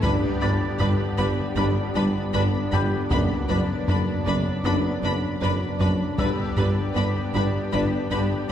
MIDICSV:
0, 0, Header, 1, 13, 480
1, 0, Start_track
1, 0, Tempo, 769231
1, 18, Time_signature, 4, 2, 24, 8
1, 5315, End_track
2, 0, Start_track
2, 0, Title_t, "Felt piano"
2, 0, Program_c, 0, 0
2, 0, Control_c, 0, 64, 127
2, 0, Note_on_c, 0, 78, 42
2, 0, Note_on_c, 0, 90, 49
2, 31, Control_c, 0, 64, 0
2, 130, Control_c, 0, 64, 127
2, 235, Note_off_c, 0, 78, 0
2, 235, Note_off_c, 0, 90, 0
2, 260, Note_on_c, 0, 93, 62
2, 1674, Note_off_c, 0, 93, 0
2, 1704, Note_on_c, 0, 79, 40
2, 1707, Note_on_c, 0, 91, 54
2, 1950, Control_c, 0, 64, 0
2, 2043, Control_c, 0, 64, 127
2, 3116, Note_off_c, 0, 79, 0
2, 3118, Note_off_c, 0, 91, 0
2, 3863, Note_on_c, 0, 88, 56
2, 3869, Control_c, 0, 64, 0
2, 3987, Control_c, 0, 64, 127
2, 5276, Note_off_c, 0, 88, 0
2, 5315, End_track
3, 0, Start_track
3, 0, Title_t, "Violin section"
3, 0, Program_c, 1, 48
3, 17, Note_on_c, 1, 83, 62
3, 67, Note_off_c, 1, 83, 0
3, 256, Note_on_c, 1, 83, 47
3, 306, Note_off_c, 1, 83, 0
3, 495, Note_on_c, 1, 83, 51
3, 545, Note_off_c, 1, 83, 0
3, 737, Note_on_c, 1, 83, 55
3, 786, Note_off_c, 1, 83, 0
3, 976, Note_on_c, 1, 83, 53
3, 1025, Note_off_c, 1, 83, 0
3, 1219, Note_on_c, 1, 83, 54
3, 1269, Note_off_c, 1, 83, 0
3, 1457, Note_on_c, 1, 83, 53
3, 1507, Note_off_c, 1, 83, 0
3, 1697, Note_on_c, 1, 83, 50
3, 1746, Note_off_c, 1, 83, 0
3, 1941, Note_on_c, 1, 83, 58
3, 1991, Note_off_c, 1, 83, 0
3, 2183, Note_on_c, 1, 83, 44
3, 2233, Note_off_c, 1, 83, 0
3, 2429, Note_on_c, 1, 83, 48
3, 2479, Note_off_c, 1, 83, 0
3, 2672, Note_on_c, 1, 83, 50
3, 2722, Note_off_c, 1, 83, 0
3, 2905, Note_on_c, 1, 83, 54
3, 2955, Note_off_c, 1, 83, 0
3, 3150, Note_on_c, 1, 83, 53
3, 3200, Note_off_c, 1, 83, 0
3, 3392, Note_on_c, 1, 83, 55
3, 3442, Note_off_c, 1, 83, 0
3, 3628, Note_on_c, 1, 83, 51
3, 3678, Note_off_c, 1, 83, 0
3, 3864, Note_on_c, 1, 83, 53
3, 3914, Note_off_c, 1, 83, 0
3, 4100, Note_on_c, 1, 83, 50
3, 4149, Note_off_c, 1, 83, 0
3, 4344, Note_on_c, 1, 83, 50
3, 4394, Note_off_c, 1, 83, 0
3, 4583, Note_on_c, 1, 83, 50
3, 4633, Note_off_c, 1, 83, 0
3, 4819, Note_on_c, 1, 83, 56
3, 4869, Note_off_c, 1, 83, 0
3, 5062, Note_on_c, 1, 83, 49
3, 5112, Note_off_c, 1, 83, 0
3, 5315, End_track
4, 0, Start_track
4, 0, Title_t, "Violin section"
4, 0, Program_c, 2, 48
4, 18, Note_on_c, 2, 71, 62
4, 68, Note_off_c, 2, 71, 0
4, 263, Note_on_c, 2, 71, 50
4, 313, Note_off_c, 2, 71, 0
4, 501, Note_on_c, 2, 71, 54
4, 551, Note_off_c, 2, 71, 0
4, 738, Note_on_c, 2, 71, 55
4, 788, Note_off_c, 2, 71, 0
4, 980, Note_on_c, 2, 71, 54
4, 1030, Note_off_c, 2, 71, 0
4, 1220, Note_on_c, 2, 71, 52
4, 1270, Note_off_c, 2, 71, 0
4, 1463, Note_on_c, 2, 71, 53
4, 1513, Note_off_c, 2, 71, 0
4, 1697, Note_on_c, 2, 71, 52
4, 1747, Note_off_c, 2, 71, 0
4, 1937, Note_on_c, 2, 71, 58
4, 1987, Note_off_c, 2, 71, 0
4, 2180, Note_on_c, 2, 71, 51
4, 2229, Note_off_c, 2, 71, 0
4, 2417, Note_on_c, 2, 71, 52
4, 2467, Note_off_c, 2, 71, 0
4, 2656, Note_on_c, 2, 71, 52
4, 2706, Note_off_c, 2, 71, 0
4, 2895, Note_on_c, 2, 71, 49
4, 2945, Note_off_c, 2, 71, 0
4, 3137, Note_on_c, 2, 71, 47
4, 3187, Note_off_c, 2, 71, 0
4, 3377, Note_on_c, 2, 71, 53
4, 3427, Note_off_c, 2, 71, 0
4, 3618, Note_on_c, 2, 71, 54
4, 3668, Note_off_c, 2, 71, 0
4, 3862, Note_on_c, 2, 71, 61
4, 3912, Note_off_c, 2, 71, 0
4, 4105, Note_on_c, 2, 71, 57
4, 4155, Note_off_c, 2, 71, 0
4, 4343, Note_on_c, 2, 71, 58
4, 4393, Note_off_c, 2, 71, 0
4, 4587, Note_on_c, 2, 71, 51
4, 4636, Note_off_c, 2, 71, 0
4, 4824, Note_on_c, 2, 71, 54
4, 4874, Note_off_c, 2, 71, 0
4, 5061, Note_on_c, 2, 71, 55
4, 5111, Note_off_c, 2, 71, 0
4, 5315, End_track
5, 0, Start_track
5, 0, Title_t, "Analog synth pad"
5, 0, Program_c, 3, 89
5, 21, Note_on_c, 3, 67, 69
5, 22, Note_on_c, 3, 62, 61
5, 23, Note_on_c, 3, 59, 62
5, 23, Note_on_c, 3, 74, 65
5, 1938, Note_on_c, 3, 54, 57
5, 1940, Note_off_c, 3, 67, 0
5, 3856, Note_off_c, 3, 62, 0
5, 3856, Note_off_c, 3, 74, 0
5, 3857, Note_off_c, 3, 59, 0
5, 3858, Note_off_c, 3, 54, 0
5, 3862, Note_on_c, 3, 67, 58
5, 3863, Note_on_c, 3, 62, 62
5, 3863, Note_on_c, 3, 74, 59
5, 3864, Note_on_c, 3, 59, 54
5, 5315, Note_off_c, 3, 59, 0
5, 5315, Note_off_c, 3, 62, 0
5, 5315, Note_off_c, 3, 67, 0
5, 5315, Note_off_c, 3, 74, 0
5, 5315, End_track
6, 0, Start_track
6, 0, Title_t, "Viola section"
6, 0, Program_c, 4, 48
6, 20, Note_on_c, 4, 62, 56
6, 70, Note_off_c, 4, 62, 0
6, 258, Note_on_c, 4, 62, 50
6, 308, Note_off_c, 4, 62, 0
6, 498, Note_on_c, 4, 62, 55
6, 548, Note_off_c, 4, 62, 0
6, 739, Note_on_c, 4, 62, 47
6, 789, Note_off_c, 4, 62, 0
6, 976, Note_on_c, 4, 62, 60
6, 1026, Note_off_c, 4, 62, 0
6, 1218, Note_on_c, 4, 62, 52
6, 1268, Note_off_c, 4, 62, 0
6, 1459, Note_on_c, 4, 62, 58
6, 1509, Note_off_c, 4, 62, 0
6, 1699, Note_on_c, 4, 62, 53
6, 1749, Note_off_c, 4, 62, 0
6, 1939, Note_on_c, 4, 62, 51
6, 1989, Note_off_c, 4, 62, 0
6, 2178, Note_on_c, 4, 62, 50
6, 2228, Note_off_c, 4, 62, 0
6, 2422, Note_on_c, 4, 62, 52
6, 2472, Note_off_c, 4, 62, 0
6, 2663, Note_on_c, 4, 62, 50
6, 2713, Note_off_c, 4, 62, 0
6, 2897, Note_on_c, 4, 62, 58
6, 2947, Note_off_c, 4, 62, 0
6, 3138, Note_on_c, 4, 62, 52
6, 3188, Note_off_c, 4, 62, 0
6, 3383, Note_on_c, 4, 62, 53
6, 3433, Note_off_c, 4, 62, 0
6, 3623, Note_on_c, 4, 62, 52
6, 3673, Note_off_c, 4, 62, 0
6, 3859, Note_on_c, 4, 62, 58
6, 3909, Note_off_c, 4, 62, 0
6, 4106, Note_on_c, 4, 62, 47
6, 4156, Note_off_c, 4, 62, 0
6, 4341, Note_on_c, 4, 62, 51
6, 4391, Note_off_c, 4, 62, 0
6, 4582, Note_on_c, 4, 62, 51
6, 4632, Note_off_c, 4, 62, 0
6, 4821, Note_on_c, 4, 62, 59
6, 4871, Note_off_c, 4, 62, 0
6, 5064, Note_on_c, 4, 62, 56
6, 5114, Note_off_c, 4, 62, 0
6, 5315, End_track
7, 0, Start_track
7, 0, Title_t, "French horn section"
7, 0, Program_c, 5, 60
7, 21, Note_on_c, 5, 62, 58
7, 22, Note_on_c, 5, 59, 62
7, 193, Note_off_c, 5, 59, 0
7, 193, Note_off_c, 5, 62, 0
7, 981, Note_on_c, 5, 59, 65
7, 982, Note_on_c, 5, 62, 61
7, 1153, Note_off_c, 5, 59, 0
7, 1154, Note_off_c, 5, 62, 0
7, 1939, Note_on_c, 5, 62, 54
7, 1940, Note_on_c, 5, 59, 55
7, 2112, Note_off_c, 5, 59, 0
7, 2112, Note_off_c, 5, 62, 0
7, 2897, Note_on_c, 5, 59, 64
7, 2897, Note_on_c, 5, 62, 67
7, 3071, Note_off_c, 5, 59, 0
7, 3071, Note_off_c, 5, 62, 0
7, 3858, Note_on_c, 5, 62, 55
7, 3860, Note_on_c, 5, 59, 57
7, 4032, Note_off_c, 5, 62, 0
7, 4033, Note_off_c, 5, 59, 0
7, 4822, Note_on_c, 5, 59, 66
7, 4823, Note_on_c, 5, 62, 66
7, 4994, Note_off_c, 5, 59, 0
7, 4994, Note_off_c, 5, 62, 0
7, 5315, End_track
8, 0, Start_track
8, 0, Title_t, "Synth arpeggio sound"
8, 0, Program_c, 6, 84
8, 22, Note_on_c, 6, 55, 87
8, 165, Note_off_c, 6, 55, 0
8, 262, Note_on_c, 6, 67, 71
8, 405, Note_off_c, 6, 67, 0
8, 500, Note_on_c, 6, 59, 64
8, 643, Note_off_c, 6, 59, 0
8, 741, Note_on_c, 6, 59, 63
8, 884, Note_off_c, 6, 59, 0
8, 981, Note_on_c, 6, 55, 98
8, 1124, Note_off_c, 6, 55, 0
8, 1460, Note_on_c, 6, 67, 56
8, 1603, Note_off_c, 6, 67, 0
8, 1702, Note_on_c, 6, 62, 62
8, 1845, Note_off_c, 6, 62, 0
8, 1940, Note_on_c, 6, 59, 86
8, 2084, Note_off_c, 6, 59, 0
8, 2181, Note_on_c, 6, 71, 67
8, 2324, Note_off_c, 6, 71, 0
8, 2423, Note_on_c, 6, 62, 63
8, 2565, Note_off_c, 6, 62, 0
8, 2663, Note_on_c, 6, 62, 63
8, 2805, Note_off_c, 6, 62, 0
8, 2902, Note_on_c, 6, 59, 92
8, 3045, Note_off_c, 6, 59, 0
8, 3384, Note_on_c, 6, 71, 55
8, 3526, Note_off_c, 6, 71, 0
8, 3623, Note_on_c, 6, 66, 66
8, 3766, Note_off_c, 6, 66, 0
8, 3861, Note_on_c, 6, 55, 79
8, 4004, Note_off_c, 6, 55, 0
8, 4103, Note_on_c, 6, 67, 65
8, 4246, Note_off_c, 6, 67, 0
8, 4343, Note_on_c, 6, 59, 59
8, 4485, Note_off_c, 6, 59, 0
8, 4583, Note_on_c, 6, 59, 61
8, 4726, Note_off_c, 6, 59, 0
8, 4821, Note_on_c, 6, 55, 84
8, 4964, Note_off_c, 6, 55, 0
8, 5315, End_track
9, 0, Start_track
9, 0, Title_t, "Analog synth bass"
9, 0, Program_c, 7, 38
9, 18, Note_on_c, 7, 43, 94
9, 162, Note_off_c, 7, 43, 0
9, 261, Note_on_c, 7, 43, 61
9, 404, Note_off_c, 7, 43, 0
9, 503, Note_on_c, 7, 43, 68
9, 646, Note_off_c, 7, 43, 0
9, 740, Note_on_c, 7, 43, 68
9, 884, Note_off_c, 7, 43, 0
9, 980, Note_on_c, 7, 43, 89
9, 1123, Note_off_c, 7, 43, 0
9, 1223, Note_on_c, 7, 43, 62
9, 1365, Note_off_c, 7, 43, 0
9, 1462, Note_on_c, 7, 43, 61
9, 1605, Note_off_c, 7, 43, 0
9, 1703, Note_on_c, 7, 55, 59
9, 1846, Note_off_c, 7, 55, 0
9, 1943, Note_on_c, 7, 42, 90
9, 2086, Note_off_c, 7, 42, 0
9, 2183, Note_on_c, 7, 42, 59
9, 2326, Note_off_c, 7, 42, 0
9, 2422, Note_on_c, 7, 42, 63
9, 2565, Note_off_c, 7, 42, 0
9, 2664, Note_on_c, 7, 42, 69
9, 2806, Note_off_c, 7, 42, 0
9, 2900, Note_on_c, 7, 42, 80
9, 3043, Note_off_c, 7, 42, 0
9, 3141, Note_on_c, 7, 42, 57
9, 3284, Note_off_c, 7, 42, 0
9, 3380, Note_on_c, 7, 42, 55
9, 3523, Note_off_c, 7, 42, 0
9, 3620, Note_on_c, 7, 54, 55
9, 3763, Note_off_c, 7, 54, 0
9, 3860, Note_on_c, 7, 43, 83
9, 4004, Note_off_c, 7, 43, 0
9, 4102, Note_on_c, 7, 43, 57
9, 4245, Note_off_c, 7, 43, 0
9, 4343, Note_on_c, 7, 43, 63
9, 4485, Note_off_c, 7, 43, 0
9, 4585, Note_on_c, 7, 43, 63
9, 4727, Note_off_c, 7, 43, 0
9, 4823, Note_on_c, 7, 43, 78
9, 4965, Note_off_c, 7, 43, 0
9, 5064, Note_on_c, 7, 43, 54
9, 5206, Note_off_c, 7, 43, 0
9, 5315, End_track
10, 0, Start_track
10, 0, Title_t, "Cello section"
10, 0, Program_c, 8, 48
10, 22, Note_on_c, 8, 43, 72
10, 72, Note_off_c, 8, 43, 0
10, 261, Note_on_c, 8, 43, 59
10, 311, Note_off_c, 8, 43, 0
10, 503, Note_on_c, 8, 43, 60
10, 553, Note_off_c, 8, 43, 0
10, 743, Note_on_c, 8, 43, 63
10, 793, Note_off_c, 8, 43, 0
10, 980, Note_on_c, 8, 43, 62
10, 1030, Note_off_c, 8, 43, 0
10, 1223, Note_on_c, 8, 43, 65
10, 1273, Note_off_c, 8, 43, 0
10, 1463, Note_on_c, 8, 43, 61
10, 1513, Note_off_c, 8, 43, 0
10, 1703, Note_on_c, 8, 43, 63
10, 1753, Note_off_c, 8, 43, 0
10, 1946, Note_on_c, 8, 42, 72
10, 1996, Note_off_c, 8, 42, 0
10, 2183, Note_on_c, 8, 42, 61
10, 2233, Note_off_c, 8, 42, 0
10, 2423, Note_on_c, 8, 42, 59
10, 2473, Note_off_c, 8, 42, 0
10, 2663, Note_on_c, 8, 42, 65
10, 2713, Note_off_c, 8, 42, 0
10, 2903, Note_on_c, 8, 42, 69
10, 2953, Note_off_c, 8, 42, 0
10, 3140, Note_on_c, 8, 42, 61
10, 3190, Note_off_c, 8, 42, 0
10, 3385, Note_on_c, 8, 42, 60
10, 3435, Note_off_c, 8, 42, 0
10, 3620, Note_on_c, 8, 42, 58
10, 3670, Note_off_c, 8, 42, 0
10, 3861, Note_on_c, 8, 43, 73
10, 3911, Note_off_c, 8, 43, 0
10, 4099, Note_on_c, 8, 43, 60
10, 4149, Note_off_c, 8, 43, 0
10, 4342, Note_on_c, 8, 43, 59
10, 4392, Note_off_c, 8, 43, 0
10, 4580, Note_on_c, 8, 43, 66
10, 4630, Note_off_c, 8, 43, 0
10, 4819, Note_on_c, 8, 43, 66
10, 4869, Note_off_c, 8, 43, 0
10, 5061, Note_on_c, 8, 43, 62
10, 5111, Note_off_c, 8, 43, 0
10, 5315, End_track
11, 0, Start_track
11, 0, Title_t, "Double bass section"
11, 0, Program_c, 10, 48
11, 24, Note_on_c, 10, 31, 65
11, 74, Note_off_c, 10, 31, 0
11, 264, Note_on_c, 10, 31, 60
11, 313, Note_off_c, 10, 31, 0
11, 501, Note_on_c, 10, 31, 57
11, 551, Note_off_c, 10, 31, 0
11, 739, Note_on_c, 10, 31, 59
11, 789, Note_off_c, 10, 31, 0
11, 980, Note_on_c, 10, 31, 69
11, 1030, Note_off_c, 10, 31, 0
11, 1221, Note_on_c, 10, 31, 58
11, 1271, Note_off_c, 10, 31, 0
11, 1461, Note_on_c, 10, 31, 56
11, 1511, Note_off_c, 10, 31, 0
11, 1702, Note_on_c, 10, 31, 65
11, 1752, Note_off_c, 10, 31, 0
11, 1941, Note_on_c, 10, 30, 64
11, 1991, Note_off_c, 10, 30, 0
11, 2181, Note_on_c, 10, 30, 60
11, 2231, Note_off_c, 10, 30, 0
11, 2425, Note_on_c, 10, 30, 54
11, 2475, Note_off_c, 10, 30, 0
11, 2665, Note_on_c, 10, 30, 58
11, 2715, Note_off_c, 10, 30, 0
11, 2904, Note_on_c, 10, 30, 63
11, 2954, Note_off_c, 10, 30, 0
11, 3140, Note_on_c, 10, 30, 56
11, 3190, Note_off_c, 10, 30, 0
11, 3381, Note_on_c, 10, 30, 63
11, 3431, Note_off_c, 10, 30, 0
11, 3619, Note_on_c, 10, 30, 63
11, 3669, Note_off_c, 10, 30, 0
11, 3863, Note_on_c, 10, 31, 62
11, 3913, Note_off_c, 10, 31, 0
11, 4102, Note_on_c, 10, 31, 57
11, 4152, Note_off_c, 10, 31, 0
11, 4344, Note_on_c, 10, 31, 54
11, 4394, Note_off_c, 10, 31, 0
11, 4584, Note_on_c, 10, 31, 60
11, 4633, Note_off_c, 10, 31, 0
11, 4824, Note_on_c, 10, 31, 66
11, 4874, Note_off_c, 10, 31, 0
11, 5063, Note_on_c, 10, 31, 63
11, 5113, Note_off_c, 10, 31, 0
11, 5315, End_track
12, 0, Start_track
12, 0, Title_t, "Tuba"
12, 0, Program_c, 11, 58
12, 20, Note_on_c, 11, 31, 68
12, 116, Note_off_c, 11, 31, 0
12, 260, Note_on_c, 11, 31, 72
12, 356, Note_off_c, 11, 31, 0
12, 500, Note_on_c, 11, 31, 55
12, 595, Note_off_c, 11, 31, 0
12, 742, Note_on_c, 11, 31, 58
12, 837, Note_off_c, 11, 31, 0
12, 981, Note_on_c, 11, 31, 59
12, 1076, Note_off_c, 11, 31, 0
12, 1224, Note_on_c, 11, 31, 53
12, 1319, Note_off_c, 11, 31, 0
12, 1461, Note_on_c, 11, 31, 58
12, 1556, Note_off_c, 11, 31, 0
12, 1704, Note_on_c, 11, 31, 58
12, 1799, Note_off_c, 11, 31, 0
12, 1943, Note_on_c, 11, 30, 70
12, 2038, Note_off_c, 11, 30, 0
12, 2185, Note_on_c, 11, 30, 64
12, 2280, Note_off_c, 11, 30, 0
12, 2425, Note_on_c, 11, 30, 61
12, 2519, Note_off_c, 11, 30, 0
12, 2663, Note_on_c, 11, 30, 62
12, 2758, Note_off_c, 11, 30, 0
12, 2903, Note_on_c, 11, 30, 63
12, 2998, Note_off_c, 11, 30, 0
12, 3144, Note_on_c, 11, 30, 59
12, 3239, Note_off_c, 11, 30, 0
12, 3383, Note_on_c, 11, 30, 57
12, 3478, Note_off_c, 11, 30, 0
12, 3622, Note_on_c, 11, 30, 61
12, 3717, Note_off_c, 11, 30, 0
12, 3865, Note_on_c, 11, 31, 69
12, 3959, Note_off_c, 11, 31, 0
12, 4102, Note_on_c, 11, 31, 70
12, 4197, Note_off_c, 11, 31, 0
12, 4341, Note_on_c, 11, 31, 63
12, 4437, Note_off_c, 11, 31, 0
12, 4582, Note_on_c, 11, 31, 64
12, 4678, Note_off_c, 11, 31, 0
12, 4823, Note_on_c, 11, 31, 68
12, 4918, Note_off_c, 11, 31, 0
12, 5063, Note_on_c, 11, 31, 56
12, 5158, Note_off_c, 11, 31, 0
12, 5315, End_track
13, 0, Start_track
13, 0, Title_t, "Taiko and cinematic ensemble drums"
13, 20, Note_on_c, 9, 41, 93
13, 82, Note_off_c, 9, 41, 0
13, 499, Note_on_c, 9, 43, 63
13, 561, Note_off_c, 9, 43, 0
13, 1701, Note_on_c, 9, 43, 52
13, 1763, Note_off_c, 9, 43, 0
13, 1939, Note_on_c, 9, 41, 86
13, 2002, Note_off_c, 9, 41, 0
13, 2421, Note_on_c, 9, 43, 60
13, 2483, Note_off_c, 9, 43, 0
13, 3623, Note_on_c, 9, 43, 50
13, 3685, Note_off_c, 9, 43, 0
13, 3859, Note_on_c, 9, 41, 83
13, 3921, Note_off_c, 9, 41, 0
13, 5315, End_track
0, 0, End_of_file